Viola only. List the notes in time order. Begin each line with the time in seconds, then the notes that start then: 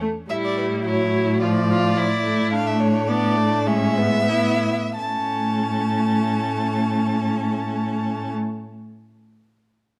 0.01 A3
0.30 G3
0.86 F#3
1.42 F3
1.97 F3
2.24 A3
2.51 A3
3.09 B3
3.37 A3
3.67 G#3
4.30 B3
4.99 A3